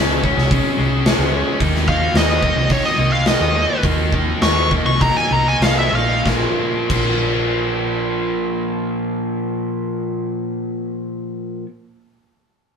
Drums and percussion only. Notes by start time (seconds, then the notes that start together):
0.24 kick
0.38 snare
0.51 kick, open hi-hat
1.06 snare, open hi-hat
1.60 kick, open hi-hat
1.75 snare
1.88 kick
2.15 snare, open hi-hat
2.43 kick
2.69 kick, open hi-hat
3.26 snare, open hi-hat
3.83 kick, open hi-hat
4.12 kick
4.42 snare, open hi-hat
4.71 kick
5.01 kick, open hi-hat
5.62 snare, open hi-hat
6.26 kick, snare
6.90 kick, crash